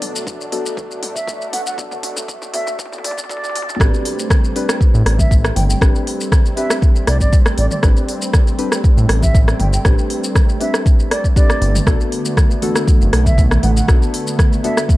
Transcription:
Already playing: B2 F#3 A3 B3 D4 F#4 A4
0.02 open hi-hat, mid tom
0.16 shaker
0.27 kick, mid tom, shaker
0.41 shaker
0.52 B3 D4 F#4 A4, open hi-hat, mid tom
0.66 shaker
0.77 kick, mid tom, shaker
0.91 shaker
1.03 open hi-hat, mid tom
1.15 E5, kick, shaker
1.27 kick, mid tom, shaker
1.41 shaker
1.53 F#5, open hi-hat, mid tom
1.66 F#5, shaker
1.78 B3 D4 F#4 A4, kick, mid tom, shaker
1.91 mid tom, shaker
2.03 open hi-hat, mid tom
2.17 mid tom, shaker
2.28 kick, mid tom, shaker
2.42 mid tom, shaker
2.53 B3 D4 F#4 A4 E5, open hi-hat, mid tom
2.67 mid tom, shaker
2.79 kick, mid tom, shaker
2.86 mid tom
2.92 mid tom, shaker
2.98 mid tom
3.04 D5, open hi-hat, mid tom
3.11 mid tom
3.18 kick, mid tom, shaker
3.24 mid tom
3.29 B3 D4 F#4 A4 D5, kick, mid tom, shaker
3.37 mid tom
3.44 mid tom, shaker
3.49 mid tom
3.56 open hi-hat, mid tom
3.62 mid tom
3.69 mid tom, shaker
3.75 mid tom
3.80 A1 G3 A3 C4 D4 G4 B4, kick, cross-stick, shaker
3.94 shaker
4.05 open hi-hat
4.19 shaker
4.30 kick, cross-stick, mid tom, shaker
4.44 shaker
4.56 C4 D4 G4 B4, open hi-hat
4.69 cross-stick, shaker
4.81 kick, shaker
4.94 A2, shaker
5.06 A1, cross-stick, open hi-hat
5.19 E5, kick, mid tom, shaker
5.31 kick, shaker
5.45 cross-stick, shaker
5.56 G1 G5, open hi-hat, mid tom
5.69 G5, shaker
5.81 A1 C4 D4 G4 B4, kick, cross-stick, shaker
5.95 shaker
6.07 open hi-hat
6.21 shaker
6.32 kick, cross-stick, mid tom, shaker
6.46 shaker
6.56 C4 D4 G4 B4 E5, open hi-hat
6.70 cross-stick, shaker
6.82 kick, shaker
6.96 shaker
7.07 C2 D5, cross-stick, open hi-hat
7.20 G1 D5, kick, shaker
7.33 kick, shaker
7.46 cross-stick, shaker
7.58 A1 D5, open hi-hat
7.71 D5, mid tom, shaker
7.83 A1 C4 D4 G4 B4, kick, cross-stick, shaker
7.97 shaker
8.09 open hi-hat
8.22 shaker
8.34 kick, cross-stick, mid tom, shaker
8.47 shaker
8.59 C4 D4 G4 B4, open hi-hat
8.72 cross-stick, shaker
8.84 kick, shaker
8.97 A2, shaker
9.09 A1, cross-stick, open hi-hat
9.22 E5, kick, mid tom, shaker
9.35 kick, shaker
9.48 cross-stick, shaker
9.59 G1 G5, open hi-hat, mid tom
9.73 G5, shaker
9.85 A1 C4 D4 G4 B4, kick, cross-stick, shaker
9.99 shaker
10.10 open hi-hat
10.24 shaker
10.35 kick, cross-stick, mid tom, shaker
10.49 shaker
10.60 C4 D4 G4 B4 E5, open hi-hat
10.74 cross-stick, shaker
10.86 kick, shaker
11.00 shaker
11.11 D5, cross-stick, open hi-hat
11.24 kick, shaker
11.36 C4 D4 G4 B4 D5, kick, shaker
11.50 cross-stick, shaker
11.61 G1, open hi-hat
11.75 mid tom, shaker
11.87 B1 D3 B3 D4 F#4 A4, kick, cross-stick, muted conga, shaker
12.01 shaker
12.12 open hi-hat
12.25 muted conga, shaker
12.37 kick, cross-stick, mid tom, high conga, shaker
12.50 muted conga, shaker
12.62 B3 D4 F#4 A4, open hi-hat, high conga, low conga
12.76 cross-stick, muted conga, shaker
12.88 kick, high conga, low conga, shaker
13.01 F#1, muted conga, shaker
13.13 B1, cross-stick, open hi-hat, high conga
13.26 E5, kick, mid tom, shaker
13.38 kick, muted conga, high conga, shaker
13.51 cross-stick, low conga, shaker
13.63 A1 F#5, open hi-hat, mid tom, muted conga, high conga
13.76 F#5, shaker
13.88 B1 B3 D4 F#4 A4, kick, cross-stick, shaker
14.02 shaker
14.14 open hi-hat
14.27 muted conga, shaker
14.39 kick, cross-stick, mid tom, high conga, shaker
14.52 muted conga, shaker
14.64 B3 D4 F#4 A4 E5, open hi-hat, high conga
14.77 cross-stick, muted conga, shaker
14.89 kick, high conga, shaker

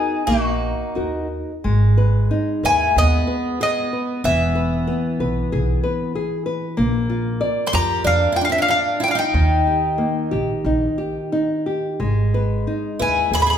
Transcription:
Already playing: D#4 F#4 G#4 A#4
0.27 A#1 A#3 D#4 F#4
0.95 D#2 D#4 F#4 A#4
1.64 G#1 G#3
1.97 B4
2.31 D#4
2.63 D#2 E4 B4 G#5
2.96 D#2 B3 G#4 D#5
3.27 B4
3.60 B3 G#4 D#5
3.93 B4
4.24 E1 E3 B3 E5
4.55 B4
4.87 B3
5.20 B1 B4
5.52 B1 G#4
5.83 B4
6.15 G#4
6.46 B4
6.77 A#1 A#3
7.10 F4
7.41 D5
7.67 A4 C6
7.73 F2 F4 G4 A#5
8.04 F2 D4 D5 F5
8.32 E4 F4 G5
8.41 D4 F5
8.50 C4 E5
8.58 D4 F5
8.69 D4 D5 F5
9.00 E4 F4 G5
9.08 D4 F5
9.15 D#4 G5
9.34 D#2 D#3
9.67 G4
9.98 A#3
10.31 A#1 G4
10.65 A#1 D#4
10.98 G4
11.32 D#4
11.66 G4
12.00 G#1 G#3
12.34 B4
12.67 D#4
12.99 D#2 E4 B4 G#5
13.31 D#2 G#4 B5
13.40 G#4 B5
13.47 G#4 B5
13.53 G#4

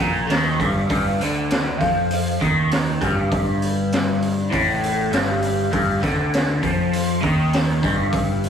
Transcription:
0.00 A#1 A#2
0.28 D#2 D#3, snare, open hi-hat
0.60 G1 G2, kick, open hi-hat
0.90 G1 G2, kick, open hi-hat
1.21 D2 D3, open hi-hat
1.51 snare, open hi-hat
1.80 F2 F3, kick, snare, open hi-hat
2.11 open hi-hat
2.40 D#2 D#3, kick, open hi-hat
2.71 snare, open hi-hat
3.01 G1 G2, kick, open hi-hat
3.32 kick, open hi-hat
3.62 open hi-hat
3.92 snare, open hi-hat
4.22 open hi-hat
4.50 A1 A2, kick, open hi-hat
4.84 open hi-hat
5.11 G1 G2, snare, open hi-hat
5.42 open hi-hat
5.72 G1 G2, kick, open hi-hat
6.02 D2 D3, kick, snare, open hi-hat
6.34 snare, open hi-hat
6.63 F2 F3, kick, open hi-hat
6.93 open hi-hat
7.21 D#2 D#3, kick, open hi-hat
7.53 snare, open hi-hat
7.83 G1 G2, kick, open hi-hat
8.13 kick, open hi-hat
8.44 open hi-hat

